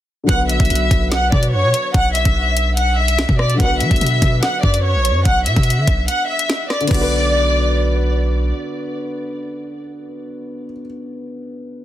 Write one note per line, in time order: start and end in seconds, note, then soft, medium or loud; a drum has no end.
0.24 3.53 D3 medium
0.24 3.55 F#3 medium
0.29 0.51 B1 loud
0.29 3.56 B3 medium
0.29 3.57 F#4 medium
0.29 0.47 F#5 loud
0.29 kick loud
0.29 closed hi-hat medium
0.34 3.58 B4 medium
0.49 0.59 A#1 loud
0.49 1.08 E5 medium
0.49 closed hi-hat medium
0.60 0.70 B1 loud
0.60 kick medium
0.60 closed hi-hat soft
0.65 closed hi-hat medium
0.70 0.90 B1 loud
0.70 closed hi-hat medium
0.75 closed hi-hat medium
0.91 1.31 B1 loud
0.91 kick medium
0.91 closed hi-hat medium
1.12 1.29 F#5 medium
1.12 snare loud
1.12 closed hi-hat medium
1.32 1.54 B2 loud
1.32 1.50 D5 medium
1.32 kick loud
1.43 closed hi-hat medium
1.52 1.65 F#2 loud
1.52 1.92 C#5 loud
1.63 1.73 B2 loud
1.74 closed hi-hat medium
1.94 2.24 B1 loud
1.94 2.12 F#5 loud
1.94 kick loud
1.94 closed hi-hat medium
2.15 2.73 E5 medium
2.15 closed hi-hat medium
2.25 3.25 B1 loud
2.25 kick medium
2.25 closed hi-hat medium
2.57 closed hi-hat medium
2.77 2.95 F#5 medium
2.77 closed hi-hat medium
2.98 3.37 E5 medium
3.08 closed hi-hat medium
3.19 snare loud
3.29 3.59 B2 loud
3.29 kick loud
3.39 3.57 D5 medium
3.39 cross-stick loud
3.50 closed hi-hat soft
3.54 6.79 D3 medium
3.54 6.85 F#3 medium
3.59 3.82 B1 loud
3.59 6.86 B3 medium
3.59 6.88 F#4 medium
3.59 3.78 F#5 loud
3.59 kick loud
3.59 closed hi-hat medium
3.65 6.89 B4 medium
3.80 3.90 F#3 loud
3.80 4.39 E5 medium
3.80 closed hi-hat medium
3.91 4.01 B1 loud
3.91 kick medium
3.91 closed hi-hat soft
3.96 closed hi-hat medium
4.01 4.21 B2 loud
4.01 closed hi-hat medium
4.06 closed hi-hat medium
4.22 4.42 B2 loud
4.22 kick medium
4.22 closed hi-hat medium
4.43 4.60 F#5 medium
4.43 snare loud
4.43 closed hi-hat medium
4.63 4.96 F#2 loud
4.63 4.81 D5 medium
4.63 kick loud
4.74 closed hi-hat medium
4.84 5.23 C#5 medium
4.94 5.12 A#1 loud
5.05 closed hi-hat medium
5.10 5.25 F#2 loud
5.25 5.48 B1 loud
5.25 5.43 F#5 loud
5.25 kick loud
5.25 closed hi-hat medium
5.46 5.56 B2 loud
5.46 6.05 E5 medium
5.46 closed hi-hat medium
5.56 5.79 B2 loud
5.56 kick medium
5.56 closed hi-hat soft
5.63 closed hi-hat medium
5.70 closed hi-hat medium
5.77 5.87 D3 loud
5.88 6.08 B1 loud
5.88 kick medium
5.88 closed hi-hat medium
6.08 6.26 F#5 medium
6.08 closed hi-hat medium
6.29 6.68 E5 medium
6.39 closed hi-hat medium
6.50 snare loud
6.70 6.88 D5 medium
6.70 cross-stick loud
6.70 snare medium
6.81 10.66 D3 medium
6.81 closed hi-hat soft
6.87 8.52 B1 loud
6.87 10.72 B3 medium
6.87 8.11 D5 loud
6.87 kick loud
6.87 closed hi-hat medium
6.87 crash medium
6.94 10.79 F#4 medium
6.94 closed hi-hat medium
7.01 10.86 B4 medium